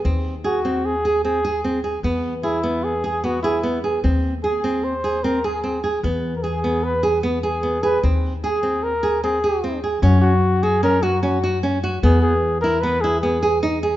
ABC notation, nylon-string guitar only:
X:1
M:5/4
L:1/8
Q:1/4=150
K:Elyd
V:1 name="Nylon-string guitar"
^B,2 G B,2 G B, G B, G | B,2 G B,2 G B, G B, G | ^B,2 G B,2 G B, G B, G | B,2 G B,2 G B, G B, G |
^B,2 G B,2 G B, G B, G | C2 z F C F C F C F | B,2 z E B, E B, G D G |]